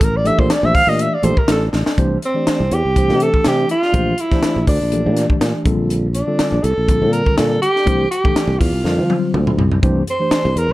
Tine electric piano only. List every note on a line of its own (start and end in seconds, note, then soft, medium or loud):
0.24 0.53 E3 medium
0.24 0.53 A3 medium
0.24 0.53 D4 medium
0.24 0.53 G4 medium
0.24 0.54 A4 loud
0.63 0.81 E3 medium
0.63 0.81 A3 medium
0.63 0.82 D4 medium
0.63 0.82 G4 medium
0.63 0.82 C5 medium
0.86 1.14 E3 medium
0.86 1.15 A3 medium
0.86 1.15 D4 medium
0.86 1.16 G4 medium
0.86 1.16 D5 medium
1.22 1.33 E3 medium
1.22 1.33 A3 medium
1.22 1.34 D4 medium
1.22 1.34 G4 loud
1.22 1.34 A4 loud
1.35 1.42 G4 soft
1.35 1.43 A4 soft
1.97 2.16 E3 medium
1.97 2.16 A3 medium
1.97 2.17 D4 loud
1.97 2.17 G4 medium
1.97 2.17 C5 loud
2.24 2.30 D5 soft
2.35 2.62 E3 medium
2.35 2.62 A3 medium
2.35 2.63 D4 medium
2.35 2.63 G4 medium
2.35 2.63 D5 medium
2.96 3.06 E3 medium
2.96 3.06 A3 medium
2.96 3.06 D4 medium
2.96 3.06 G4 medium
2.96 3.07 C5 medium
3.08 3.71 E3 medium
3.08 3.72 A3 medium
3.08 3.72 D4 medium
3.08 3.72 G4 medium
3.08 3.72 A4 medium
3.92 4.12 E3 medium
3.92 4.12 A3 medium
3.92 4.13 D4 medium
3.92 4.13 G4 medium
3.92 4.13 C5 loud
4.19 4.25 A4 soft
4.31 4.59 E3 medium
4.31 4.59 A3 medium
4.31 4.59 D4 medium
4.31 4.59 G4 medium
4.31 4.59 C5 medium
4.92 5.02 E3 medium
4.92 5.02 A3 medium
4.92 5.02 D4 medium
4.92 5.02 G4 medium
4.92 5.03 A4 medium
5.04 5.65 E3 medium
5.04 5.66 A3 medium
5.04 5.66 D4 medium
5.04 5.66 G4 medium
5.04 5.66 D5 medium
5.65 6.05 D3 medium
5.65 6.06 G3 medium
5.65 6.06 C4 medium
5.65 6.06 F4 medium
5.65 6.06 A4 medium
6.16 6.22 A4 soft
6.27 6.55 D3 medium
6.27 6.55 G3 medium
6.27 6.55 C4 medium
6.27 6.55 F4 medium
6.27 6.55 A4 medium
6.88 6.98 D3 medium
6.88 6.98 G3 medium
6.88 6.98 C4 medium
6.88 6.99 F4 medium
6.88 6.99 A4 medium
7.01 7.65 D3 medium
7.01 7.65 G3 medium
7.01 7.65 C4 medium
7.01 7.65 F4 medium
7.01 7.65 A4 medium
7.86 8.05 E3 medium
7.86 8.05 A3 medium
7.86 8.05 D4 medium
7.86 8.05 G4 medium
7.86 8.06 C5 loud
8.10 8.17 G4 soft
8.24 8.51 E3 medium
8.24 8.51 A3 medium
8.24 8.52 D4 medium
8.24 8.52 G4 medium
8.24 8.52 A4 medium
8.84 8.94 D3 medium
8.84 8.95 G3 medium
8.84 8.95 C4 medium
8.84 8.95 F4 medium
8.84 8.95 A#4 medium
8.98 9.61 D3 medium
8.98 9.62 G3 medium
8.98 9.62 C4 medium
8.98 9.62 F4 medium
8.98 9.62 C5 medium
9.82 10.02 E3 loud
9.82 10.02 A3 medium
9.82 10.01 D4 medium
9.82 10.02 G4 loud
9.82 10.02 C5 loud
10.08 10.14 A4 soft
10.19 10.47 E3 medium
10.19 10.48 A3 medium
10.19 10.48 D4 medium
10.19 10.48 G4 medium
10.19 10.48 C5 medium